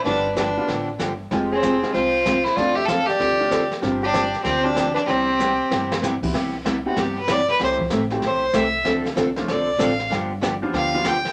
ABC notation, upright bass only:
X:1
M:4/4
L:1/8
Q:"Swing" 1/4=191
K:C
V:1 name="Upright bass" clef=bass
G,,,4 A,,,2 G,,,2 | F,,,4 C,,4 | F,,,4 D,,4 | G,,,4 D,,4 |
C,,4 G,,,4 | C,,4 G,,4 | C,,2 A,,,2 B,,,2 C,,2 | D,,2 C,,2 B,,,2 A,,,2 |
G,,,4 D,,4 |]